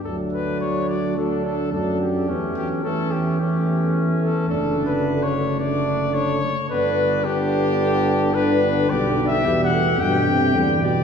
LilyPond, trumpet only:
\new Staff \with { instrumentName = "Trumpet" } { \time 4/4 \key d \major \tempo 4 = 109 a'8 b'8 cis''8 d''8 a'8 a'8 a'8 g'8~ | g'8 g'8 a'8 g'8 g'4 r8 a'8 | \tuplet 3/2 { a'4 b'8~ b'8 cis''4 } d''4 cis''4 | b'4 g'2 b'4 |
\key g \major \tuplet 3/2 { d''4 e''8~ e''8 fis''4 } g''4. d''8 | }